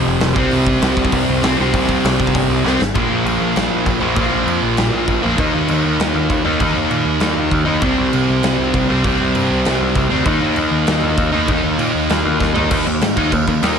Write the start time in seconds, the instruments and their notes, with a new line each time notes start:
Already playing: distorted electric guitar F2 C3 F3
0.05 picked electric bass F1
0.20 picked electric bass F1, snare, open hi-hat
0.35 picked electric bass C2, distorted electric guitar C3 G3 C4, kick
0.51 picked electric bass C2, open hi-hat
0.67 kick
0.81 picked electric bass C2, snare, open hi-hat
0.97 picked electric bass C2, kick
1.05 kick
1.12 picked electric bass C2, kick, open hi-hat
1.29 picked electric bass C2
1.42 picked electric bass C2, distorted electric guitar C3 G3 C4, snare, open hi-hat
1.57 picked electric bass C2, distorted electric guitar C3 G3 C4
1.74 picked electric bass C2, kick, open hi-hat
1.89 kick
2.04 picked electric bass C2, snare, open hi-hat
2.20 picked electric bass C2, kick
2.27 kick
2.35 picked electric bass G1, kick, open hi-hat
2.49 picked electric bass C2
2.64 picked electric bass C2, distorted electric guitar C3 G3 C4, snare
2.80 picked electric bass G#1, snare
2.94 picked electric bass A#1, distorted electric guitar A#2 F3 A#3, kick, crash
3.10 picked electric bass A#1
3.25 picked electric bass A#1, crash
3.40 picked electric bass A#1
3.56 picked electric bass A#1, snare, crash
3.70 picked electric bass A#1
3.86 picked electric bass A#1, kick, crash
4.00 picked electric bass A#1, distorted electric guitar A#2 F3 A#3
4.15 picked electric bass A#1, distorted electric guitar A#2 F3 A#3, kick, crash
4.32 picked electric bass A#1
4.46 picked electric bass F2, crash
4.62 picked electric bass A#1
4.77 picked electric bass A#1, snare, crash
4.92 picked electric bass A#1
5.08 picked electric bass A#1, kick, crash
5.23 picked electric bass A#1, distorted electric guitar A#2 F3 A#3
5.37 picked electric bass D#2, distorted electric guitar D#3 A#3 D#4, kick, crash
5.54 picked electric bass D#2
5.68 picked electric bass D#2, crash
5.84 picked electric bass D#2
5.99 picked electric bass D#2, snare, crash
6.14 picked electric bass D#2
6.30 picked electric bass D#2, kick, crash
6.45 picked electric bass D#2, distorted electric guitar D#3 A#3 D#4
6.60 picked electric bass D#2, distorted electric guitar D#3 A#3 D#4, kick, crash
6.75 picked electric bass D#2
6.90 picked electric bass A#2, crash
7.05 picked electric bass D#2
7.20 picked electric bass D#2, snare, crash
7.36 picked electric bass D#2
7.51 picked electric bass D#2, kick, crash
7.65 picked electric bass D#2, distorted electric guitar D#3 A#3 D#4
7.81 picked electric bass C2, distorted electric guitar C3 G3 C4, kick, crash
7.97 picked electric bass C2
8.13 picked electric bass C2, crash
8.29 picked electric bass C2
8.43 picked electric bass C2, snare, crash
8.58 picked electric bass C2
8.74 picked electric bass C2, kick, crash
8.89 picked electric bass C2, distorted electric guitar C3 G3 C4
9.04 picked electric bass C2, distorted electric guitar C3 G3 C4, kick, crash
9.21 picked electric bass C2
9.35 picked electric bass G2, crash
9.50 picked electric bass C2
9.65 picked electric bass C2, snare, crash
9.80 picked electric bass C2
9.95 picked electric bass C2, kick, crash
10.10 picked electric bass D2, distorted electric guitar C3 G3 C4
10.25 picked electric bass D#2, distorted electric guitar D#3 A#3 D#4, kick, crash
10.42 picked electric bass D#2
10.56 picked electric bass D#2, crash
10.71 picked electric bass D#2
10.87 picked electric bass D#2, snare, crash
11.03 picked electric bass D#2
11.18 picked electric bass D#2, kick, crash
11.32 picked electric bass D#2, distorted electric guitar D#3 A#3 D#4
11.48 picked electric bass D#2, distorted electric guitar D#3 A#3 D#4, kick, crash
11.63 picked electric bass D#2
11.78 picked electric bass A#2, crash
11.94 picked electric bass D#2
12.09 picked electric bass D#2, snare, crash
12.25 picked electric bass D#2
12.40 picked electric bass D#2, kick, snare
12.54 picked electric bass D#2, distorted electric guitar D#3 A#3 D#4, floor tom
12.71 picked electric bass D#2, distorted electric guitar D#3 A#3 D#4, kick, crash
12.86 picked electric bass D#2, distorted electric guitar D#3 A#3, crash
13.01 picked electric bass G#2, distorted electric guitar D#3 A#3, snare, crash
13.16 picked electric bass D#2, distorted electric guitar D#3 A#3 D#4, kick, crash
13.32 picked electric bass D#2, distorted electric guitar D#3 A#3, kick, crash
13.47 picked electric bass D#2, distorted electric guitar D#3 A#3, kick, crash
13.62 picked electric bass D#2, distorted electric guitar D#3 A#3 D#4, snare, crash